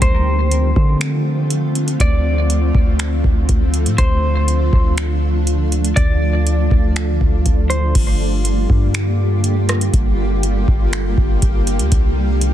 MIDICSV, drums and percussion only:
0, 0, Header, 1, 2, 480
1, 0, Start_track
1, 0, Tempo, 495868
1, 17, Time_signature, 4, 2, 24, 8
1, 12135, End_track
2, 0, Start_track
2, 0, Title_t, "Drums"
2, 17, Note_on_c, 9, 42, 84
2, 18, Note_on_c, 9, 36, 107
2, 114, Note_off_c, 9, 36, 0
2, 114, Note_off_c, 9, 42, 0
2, 498, Note_on_c, 9, 42, 73
2, 595, Note_off_c, 9, 42, 0
2, 738, Note_on_c, 9, 36, 96
2, 835, Note_off_c, 9, 36, 0
2, 977, Note_on_c, 9, 42, 72
2, 980, Note_on_c, 9, 26, 110
2, 1073, Note_off_c, 9, 42, 0
2, 1077, Note_off_c, 9, 26, 0
2, 1457, Note_on_c, 9, 42, 81
2, 1553, Note_off_c, 9, 42, 0
2, 1698, Note_on_c, 9, 42, 65
2, 1795, Note_off_c, 9, 42, 0
2, 1818, Note_on_c, 9, 42, 62
2, 1914, Note_off_c, 9, 42, 0
2, 1937, Note_on_c, 9, 36, 108
2, 1937, Note_on_c, 9, 42, 84
2, 2034, Note_off_c, 9, 36, 0
2, 2034, Note_off_c, 9, 42, 0
2, 2419, Note_on_c, 9, 42, 73
2, 2516, Note_off_c, 9, 42, 0
2, 2658, Note_on_c, 9, 36, 99
2, 2755, Note_off_c, 9, 36, 0
2, 2898, Note_on_c, 9, 42, 72
2, 2901, Note_on_c, 9, 26, 106
2, 2995, Note_off_c, 9, 42, 0
2, 2998, Note_off_c, 9, 26, 0
2, 3139, Note_on_c, 9, 36, 91
2, 3236, Note_off_c, 9, 36, 0
2, 3377, Note_on_c, 9, 42, 78
2, 3379, Note_on_c, 9, 36, 99
2, 3473, Note_off_c, 9, 42, 0
2, 3476, Note_off_c, 9, 36, 0
2, 3617, Note_on_c, 9, 42, 63
2, 3714, Note_off_c, 9, 42, 0
2, 3738, Note_on_c, 9, 42, 65
2, 3834, Note_off_c, 9, 42, 0
2, 3856, Note_on_c, 9, 42, 86
2, 3857, Note_on_c, 9, 36, 108
2, 3953, Note_off_c, 9, 42, 0
2, 3954, Note_off_c, 9, 36, 0
2, 4337, Note_on_c, 9, 42, 70
2, 4434, Note_off_c, 9, 42, 0
2, 4578, Note_on_c, 9, 36, 100
2, 4675, Note_off_c, 9, 36, 0
2, 4816, Note_on_c, 9, 42, 74
2, 4819, Note_on_c, 9, 26, 107
2, 4913, Note_off_c, 9, 42, 0
2, 4916, Note_off_c, 9, 26, 0
2, 5295, Note_on_c, 9, 42, 75
2, 5392, Note_off_c, 9, 42, 0
2, 5538, Note_on_c, 9, 42, 65
2, 5635, Note_off_c, 9, 42, 0
2, 5658, Note_on_c, 9, 42, 65
2, 5755, Note_off_c, 9, 42, 0
2, 5777, Note_on_c, 9, 42, 83
2, 5778, Note_on_c, 9, 36, 109
2, 5874, Note_off_c, 9, 36, 0
2, 5874, Note_off_c, 9, 42, 0
2, 6259, Note_on_c, 9, 42, 71
2, 6356, Note_off_c, 9, 42, 0
2, 6499, Note_on_c, 9, 36, 99
2, 6596, Note_off_c, 9, 36, 0
2, 6738, Note_on_c, 9, 42, 71
2, 6741, Note_on_c, 9, 26, 101
2, 6835, Note_off_c, 9, 42, 0
2, 6838, Note_off_c, 9, 26, 0
2, 6980, Note_on_c, 9, 36, 88
2, 7077, Note_off_c, 9, 36, 0
2, 7218, Note_on_c, 9, 42, 77
2, 7220, Note_on_c, 9, 36, 97
2, 7314, Note_off_c, 9, 42, 0
2, 7317, Note_off_c, 9, 36, 0
2, 7458, Note_on_c, 9, 42, 75
2, 7555, Note_off_c, 9, 42, 0
2, 7697, Note_on_c, 9, 42, 88
2, 7697, Note_on_c, 9, 49, 99
2, 7698, Note_on_c, 9, 36, 113
2, 7794, Note_off_c, 9, 36, 0
2, 7794, Note_off_c, 9, 42, 0
2, 7794, Note_off_c, 9, 49, 0
2, 8179, Note_on_c, 9, 42, 74
2, 8276, Note_off_c, 9, 42, 0
2, 8419, Note_on_c, 9, 36, 103
2, 8516, Note_off_c, 9, 36, 0
2, 8658, Note_on_c, 9, 42, 74
2, 8661, Note_on_c, 9, 26, 109
2, 8755, Note_off_c, 9, 42, 0
2, 8758, Note_off_c, 9, 26, 0
2, 9137, Note_on_c, 9, 42, 80
2, 9234, Note_off_c, 9, 42, 0
2, 9378, Note_on_c, 9, 42, 71
2, 9383, Note_on_c, 9, 37, 108
2, 9475, Note_off_c, 9, 42, 0
2, 9479, Note_off_c, 9, 37, 0
2, 9499, Note_on_c, 9, 42, 67
2, 9596, Note_off_c, 9, 42, 0
2, 9618, Note_on_c, 9, 36, 116
2, 9618, Note_on_c, 9, 42, 90
2, 9714, Note_off_c, 9, 36, 0
2, 9715, Note_off_c, 9, 42, 0
2, 10099, Note_on_c, 9, 42, 72
2, 10196, Note_off_c, 9, 42, 0
2, 10338, Note_on_c, 9, 36, 102
2, 10435, Note_off_c, 9, 36, 0
2, 10579, Note_on_c, 9, 42, 73
2, 10582, Note_on_c, 9, 26, 107
2, 10676, Note_off_c, 9, 42, 0
2, 10679, Note_off_c, 9, 26, 0
2, 10819, Note_on_c, 9, 36, 92
2, 10916, Note_off_c, 9, 36, 0
2, 11057, Note_on_c, 9, 42, 78
2, 11059, Note_on_c, 9, 36, 100
2, 11153, Note_off_c, 9, 42, 0
2, 11156, Note_off_c, 9, 36, 0
2, 11298, Note_on_c, 9, 42, 69
2, 11395, Note_off_c, 9, 42, 0
2, 11417, Note_on_c, 9, 42, 68
2, 11514, Note_off_c, 9, 42, 0
2, 11536, Note_on_c, 9, 42, 88
2, 11537, Note_on_c, 9, 36, 118
2, 11633, Note_off_c, 9, 36, 0
2, 11633, Note_off_c, 9, 42, 0
2, 12017, Note_on_c, 9, 42, 74
2, 12114, Note_off_c, 9, 42, 0
2, 12135, End_track
0, 0, End_of_file